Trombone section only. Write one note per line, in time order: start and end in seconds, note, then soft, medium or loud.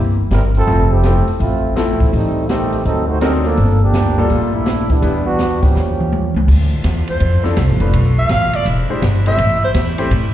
0.32 0.43 G3 medium
0.32 0.43 C4 medium
0.32 0.42 E4 medium
0.32 0.42 A#4 loud
0.56 0.89 F3 medium
0.56 0.89 C4 medium
0.56 0.90 E4 medium
0.56 0.90 A4 loud
0.91 1.28 F3 medium
0.91 1.28 C4 medium
0.91 1.27 E4 medium
0.91 1.27 G4 loud
1.40 1.74 A3 medium
1.40 1.74 C4 medium
1.40 1.74 E4 medium
1.40 1.74 F4 medium
1.76 2.13 F3 medium
1.76 2.13 A3 medium
1.76 2.12 C4 medium
1.76 2.13 E4 medium
2.14 2.50 G3 medium
2.14 2.47 A3 medium
2.14 2.47 C4 medium
2.14 2.50 D#4 loud
2.48 2.85 D#3 medium
2.48 2.85 A3 medium
2.48 2.85 C4 medium
2.48 2.85 G4 loud
2.85 3.07 F#3 medium
2.85 3.07 C4 medium
2.85 3.07 D#4 medium
2.85 3.07 A4 medium
3.08 3.22 A3 medium
3.08 3.20 D#4 medium
3.08 3.22 F#4 medium
3.08 3.22 C5 loud
3.20 3.31 G3 medium
3.20 3.31 C4 medium
3.20 3.32 D#4 medium
3.20 3.31 A#4 loud
3.44 3.79 F3 medium
3.44 3.79 A#3 medium
3.44 3.79 D4 medium
3.44 3.79 A4 loud
3.80 4.30 F3 medium
3.80 4.28 A#3 medium
3.80 4.28 D4 medium
3.80 4.30 G4 loud
4.29 4.52 A3 medium
4.29 4.52 A#3 medium
4.29 4.52 D4 medium
4.29 4.54 F4 medium
4.53 4.90 A3 medium
4.53 4.90 A#3 medium
4.53 4.89 D4 medium
4.53 4.90 E4 loud
4.90 5.24 E3 medium
4.90 5.26 G3 medium
4.90 5.23 B3 medium
4.90 5.23 D4 loud
5.24 5.59 E3 medium
5.24 5.59 B3 medium
5.24 5.59 D4 medium
5.24 5.59 F#4 medium
5.61 6.35 F3 medium
5.61 6.35 A#3 medium
5.61 6.35 C#4 medium
5.61 6.35 G4 medium